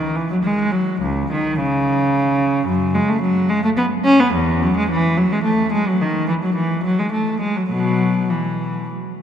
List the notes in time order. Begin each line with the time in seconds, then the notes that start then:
Already playing: D#3
0.16 E3
0.31 F#3
0.43 G#3
0.72 F#3
1.02 C#2
1.32 D#3
1.60 C#3
2.67 F#2
2.94 G#3
3.08 A3
3.22 F#3
3.49 G#3
3.64 A3
3.77 B3
4.04 C#4
4.20 B3
4.34 E2
4.62 F#3
4.77 G#3
4.91 E3
5.17 F#3
5.32 G#3
5.44 A3
5.72 G#3
5.88 F#3
6.01 D#3
6.28 E3
6.43 F#3
6.56 E3
6.84 F#3
6.99 G#3
7.12 A3
7.40 G#3
7.56 F#3
7.70 B2 F#3
8.29 E3